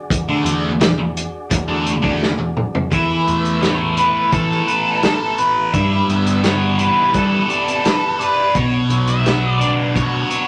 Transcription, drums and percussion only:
0.10 kick, closed hi-hat
0.46 closed hi-hat
0.81 snare, closed hi-hat
1.17 closed hi-hat
1.51 kick, closed hi-hat
1.87 closed hi-hat
2.04 kick
2.23 snare
2.57 mid tom
2.75 floor tom
2.92 kick, closed hi-hat
3.28 closed hi-hat
3.45 closed hi-hat
3.62 snare, closed hi-hat
3.97 closed hi-hat
4.32 kick, closed hi-hat
4.51 snare
4.68 closed hi-hat
5.03 snare, closed hi-hat
5.38 closed hi-hat
5.74 kick, closed hi-hat
6.10 closed hi-hat
6.27 closed hi-hat
6.44 snare, closed hi-hat
6.79 closed hi-hat
7.14 kick, closed hi-hat
7.50 closed hi-hat
7.68 closed hi-hat
7.85 snare, closed hi-hat
8.21 closed hi-hat
8.55 kick, closed hi-hat
8.90 closed hi-hat
9.08 closed hi-hat
9.26 snare, closed hi-hat
9.61 closed hi-hat
9.96 kick, closed hi-hat
10.31 closed hi-hat

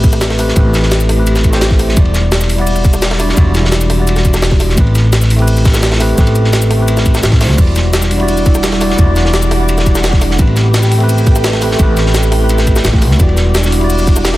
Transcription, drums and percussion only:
0.04 kick, closed hi-hat, ride, shaker
0.13 snare, closed hi-hat, shaker
0.21 snare, closed hi-hat, ride, shaker
0.30 snare
0.39 snare, open hi-hat, ride, shaker
0.48 snare
0.56 kick, closed hi-hat, ride, shaker
0.74 snare, closed hi-hat, ride, shaker
0.83 snare
0.91 snare, closed hi-hat, ride, shaker
1.01 ride, shaker
1.09 snare, open hi-hat, ride
1.27 closed hi-hat, ride, shaker
1.35 snare, closed hi-hat, shaker
1.44 kick, closed hi-hat, ride, shaker
1.53 snare, closed hi-hat, shaker
1.61 snare, closed hi-hat, ride, shaker
1.71 kick, snare
1.79 snare, open hi-hat, ride, shaker
1.89 snare
1.97 kick, closed hi-hat, ride, shaker
2.05 ride
2.14 snare, closed hi-hat, ride, shaker
2.32 snare, closed hi-hat, ride, shaker
2.41 snare, shaker
2.50 open hi-hat, ride
2.58 ride
2.66 closed hi-hat, open hi-hat, shaker
2.75 closed hi-hat, ride, shaker
2.85 kick, closed hi-hat, ride, shaker
2.93 snare, closed hi-hat, shaker
3.02 snare, closed hi-hat, ride, shaker
3.11 snare
3.20 snare, open hi-hat, ride, shaker
3.29 snare
3.37 kick, closed hi-hat, ride, shaker
3.54 snare, closed hi-hat, ride, shaker
3.65 snare
3.72 snare, closed hi-hat, ride, shaker
3.81 ride, shaker
3.90 snare, open hi-hat, ride
4.07 closed hi-hat, ride, shaker
4.16 snare, closed hi-hat, shaker
4.25 kick, closed hi-hat, ride, shaker
4.34 snare, closed hi-hat, shaker
4.42 snare, closed hi-hat, ride, shaker
4.51 kick, snare
4.60 snare, open hi-hat, ride, shaker
4.69 snare
4.78 kick, closed hi-hat, ride, shaker
4.87 ride
4.95 snare, closed hi-hat, ride, shaker
5.12 snare, closed hi-hat, ride, shaker
5.22 snare, shaker
5.30 open hi-hat, ride
5.39 ride
5.47 closed hi-hat, open hi-hat, shaker
5.57 closed hi-hat, ride, shaker
5.65 kick, snare, closed hi-hat, ride, shaker
5.74 snare, closed hi-hat, ride, shaker
5.83 snare, closed hi-hat, ride, shaker
5.92 snare, ride
6.00 snare, open hi-hat, ride, shaker
6.09 ride
6.18 kick, snare, closed hi-hat, ride, shaker
6.27 closed hi-hat, ride
6.36 closed hi-hat, ride, shaker
6.45 snare, ride
6.53 snare, closed hi-hat, ride, shaker
6.62 ride, shaker
6.71 snare, open hi-hat, ride
6.88 closed hi-hat, ride, shaker
6.97 snare, closed hi-hat, shaker
7.06 kick, closed hi-hat, ride, shaker
7.15 snare, closed hi-hat, shaker
7.23 snare, closed hi-hat, ride, shaker
7.32 kick, snare, ride
7.41 snare, open hi-hat, ride, shaker
7.50 snare
7.58 kick, closed hi-hat, ride, crash, shaker
7.67 ride
7.76 snare, closed hi-hat, ride, shaker
7.93 snare, closed hi-hat, ride, shaker
8.02 snare, shaker
8.11 open hi-hat, ride
8.20 ride
8.28 closed hi-hat, open hi-hat, shaker
8.37 closed hi-hat, ride, shaker
8.46 kick, closed hi-hat, ride, shaker
8.55 snare, closed hi-hat, shaker
8.63 snare, closed hi-hat, ride, shaker
8.73 snare
8.81 snare, open hi-hat, ride, shaker
8.90 snare
8.99 kick, closed hi-hat, ride, shaker
9.16 snare, closed hi-hat, ride, shaker
9.25 snare
9.34 snare, closed hi-hat, ride, shaker
9.43 ride, shaker
9.51 snare, open hi-hat, ride
9.69 closed hi-hat, ride, shaker
9.78 snare, closed hi-hat, shaker
9.86 kick, closed hi-hat, ride, shaker
9.95 snare, closed hi-hat, shaker
10.04 snare, closed hi-hat, ride, shaker
10.13 kick, snare
10.21 snare, open hi-hat, ride, shaker
10.31 snare
10.39 kick, closed hi-hat, ride, shaker
10.47 ride
10.56 snare, closed hi-hat, ride, shaker
10.74 snare, closed hi-hat, ride, shaker
10.83 snare, shaker
10.91 open hi-hat, ride
11.00 ride
11.09 closed hi-hat, open hi-hat, shaker
11.18 closed hi-hat, ride, shaker
11.27 kick, closed hi-hat, ride, shaker
11.36 snare, closed hi-hat, shaker
11.44 snare, closed hi-hat, ride, shaker
11.53 snare
11.62 snare, open hi-hat, ride, shaker
11.71 snare
11.79 kick, closed hi-hat, ride, shaker
11.97 snare, closed hi-hat, ride, shaker
12.06 snare
12.14 snare, closed hi-hat, ride, shaker
12.23 ride, shaker
12.32 snare, open hi-hat, ride
12.49 closed hi-hat, ride, shaker
12.58 snare, closed hi-hat, shaker
12.67 kick, closed hi-hat, ride, shaker
12.76 snare, closed hi-hat, shaker
12.85 snare, closed hi-hat, ride, shaker
12.93 kick, snare
13.02 snare, open hi-hat, ride, shaker
13.11 snare
13.20 kick, closed hi-hat, ride, shaker
13.29 ride
13.36 snare, closed hi-hat, ride, shaker
13.54 snare, closed hi-hat, ride, shaker
13.64 snare, shaker
13.72 open hi-hat, ride
13.81 ride
13.90 closed hi-hat, open hi-hat, shaker
13.99 closed hi-hat, ride, shaker
14.07 kick, closed hi-hat, ride, shaker
14.16 snare, closed hi-hat, shaker
14.25 snare, closed hi-hat, ride, shaker
14.34 snare

